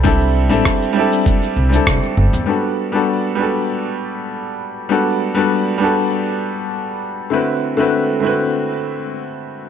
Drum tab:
SH |xx-xxx-xxx-xxx-x|----------------|----------------|----------------|
SD |----r-------r---|----------------|----------------|----------------|
BD |o---o---o---o---|----------------|----------------|----------------|